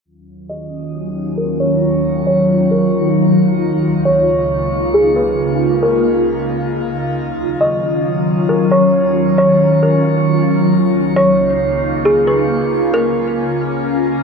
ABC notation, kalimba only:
X:1
M:4/4
L:1/8
Q:1/4=135
K:Ebm
V:1 name="Kalimba"
z2 e4 B d | z2 d2 B2 z2 | z2 d4 A c | z2 B6 |
z2 e4 B d | z2 d2 B2 z2 | z2 d4 A c | z2 B6 |]